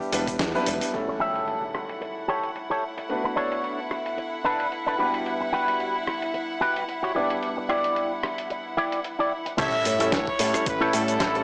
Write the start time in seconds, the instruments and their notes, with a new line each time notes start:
Already playing: trumpet section G4, grand piano B4
0.02 shaker
0.12 fingered electric bass E1, grand piano G3 B3 D4 E4 B4, open hi-hat, cabasa
0.27 kick, closed hi-hat, cabasa, shaker
0.39 fingered electric bass E2, kick, snare, closed hi-hat, cabasa, shaker
0.54 grand piano G3 B3 D4 E4 B4, shaker
0.66 fingered electric bass E1, open hi-hat, cabasa
0.81 open hi-hat, cabasa, shaker
0.93 grand piano G3 A3 C#4 E4 A4, string section E4 F#5, closed hi-hat, impact
1.08 muted clean electric guitar stroke
1.20 clean electric guitar G4 A4 E5
1.35 closed hi-hat
1.47 closed hi-hat
1.75 cross-stick
1.89 closed hi-hat
2.01 muted clean electric guitar stroke, closed hi-hat
2.28 clean electric guitar G4 A4 C#5
2.44 closed hi-hat
2.56 closed hi-hat
2.70 clean electric guitar G4 A4 C#5
2.97 muted clean electric guitar stroke, closed hi-hat
3.09 grand piano A3 B3 D4 F#4 B4, closed hi-hat
3.24 muted clean electric guitar stroke
3.36 clean electric guitar D4 A4 C#5
3.52 closed hi-hat
3.64 closed hi-hat
3.91 cross-stick
4.06 closed hi-hat
4.17 muted clean electric guitar stroke, closed hi-hat
4.45 clean electric guitar D4 A4 B4
4.60 closed hi-hat
4.72 closed hi-hat
4.87 clean electric guitar D4 A4 B4
4.98 grand piano G3 B3 D4 B4 F#5, clean electric guitar F#4 G4 B4
5.14 closed hi-hat
5.26 closed hi-hat
5.40 muted clean electric guitar stroke
5.52 clean electric guitar F#4 G4 B4
5.68 closed hi-hat
5.80 closed hi-hat
6.07 cross-stick
6.22 closed hi-hat
6.34 muted clean electric guitar stroke, closed hi-hat
6.61 clean electric guitar F#4 G4 B4
6.76 closed hi-hat
6.89 closed hi-hat
7.03 clean electric guitar F#4 G4 C#5
7.15 grand piano G3 B3 D4 E4 B4, clean electric guitar E4 G4 D5
7.30 closed hi-hat
7.42 closed hi-hat
7.57 muted clean electric guitar stroke
7.69 clean electric guitar E4 G4 D5, cross-stick
7.84 closed hi-hat
7.96 closed hi-hat
8.23 cross-stick
8.38 closed hi-hat
8.50 muted clean electric guitar stroke, closed hi-hat
8.77 clean electric guitar E4 G4 D5
8.92 closed hi-hat
9.04 closed hi-hat
9.19 clean electric guitar E4 G4 D5
9.46 muted clean electric guitar stroke, closed hi-hat
9.58 fingered electric bass A1, grand piano G3 A3 C#4 E4 A4, clean electric guitar E4 G4 A4 C#5, string section E4 F#5, trumpet section E5, kick, closed hi-hat, crash, sub drop, cabasa
9.85 fingered electric bass A2, muted clean electric guitar stroke, open hi-hat, cabasa
9.99 grand piano G3 A3 C#4 E4 A4, clean electric guitar E4 G4 A4 C#5, closed hi-hat, cabasa
10.12 fingered electric bass A1, trumpet section C#5, kick, snare, closed hi-hat, cabasa
10.27 kick
10.39 fingered electric bass A2, grand piano G3 A3 C#4 E4 A4, open hi-hat, cabasa
10.54 muted clean electric guitar stroke, cross-stick, closed hi-hat, cabasa
10.66 fingered electric bass A1, trumpet section B4, muted clean electric guitar stroke, kick, closed hi-hat, cabasa
10.81 clean electric guitar E4 G4 A4 C#5
10.93 fingered electric bass A2, grand piano G3 A3 C#4 E4 A4, trumpet section A4, open hi-hat, cabasa
11.08 closed hi-hat, cabasa
11.20 fingered electric bass A1, clean electric guitar E4 G4 A4 C#5, kick, snare, closed hi-hat, cabasa
11.35 grand piano G3 A3 C#4 E4 A4, closed hi-hat